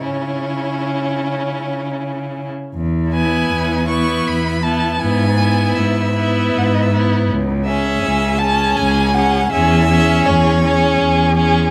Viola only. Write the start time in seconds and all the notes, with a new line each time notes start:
0.04 C#4
3.13 B3
3.88 B3
4.64 B3
5.01 B3
5.38 B3
6.16 B3
6.92 B3
7.68 C#4
8.42 C#4
9.15 C#4
9.52 C#4
9.89 C#4
10.64 C#4
11.37 C#4